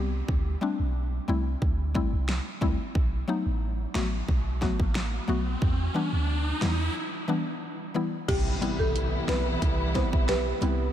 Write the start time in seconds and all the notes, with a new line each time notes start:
Already playing: C2
0.28 D2, kick
0.61 G3 A3 C4 D4
0.79 B1
1.28 C2 G3 A3 C4 E4
1.62 D2, kick
1.95 G3 A3 C4 E4, kick
2.13 C2
2.29 finger snap, snare
2.61 D2 G3 A3 C4 E4, kick
2.95 B1, kick, riser
3.28 F#3 A3 B3 D#4
3.46 A1
3.94 A1 F#3 A3 B3 F#4, finger snap, snare
4.28 B1, kick
4.61 F#3 A3 B3 F#4, kick, snare
4.80 A1, kick
4.95 finger snap, snare
5.28 B1 F#3 A3 B3 F#4
5.62 E2, kick
5.94 E3 G3 B3 D4
6.13 D2
6.61 E2 E3 G3 B3 E4, finger snap, snare
7.28 E3 G3 B3 D4
7.94 E3 G3 B3 E4
8.28 C2 C3 E3 G3 B3 E4 G4, kick, closed hi-hat, crash, impact
8.61 G3 B3 C4 E4, closed hi-hat
8.79 B1 A4
8.95 E4, closed hi-hat
9.28 B1 G3 B3 C4 E4 B4, finger snap, snare, closed hi-hat
9.62 C2 E4, kick, closed hi-hat
9.94 G3 B3 C4 E4 C5, kick, snare, closed hi-hat
10.13 B1, kick
10.29 G4 B4, finger snap, snare, closed hi-hat
10.61 C2 G3 B3 C4 E4, closed hi-hat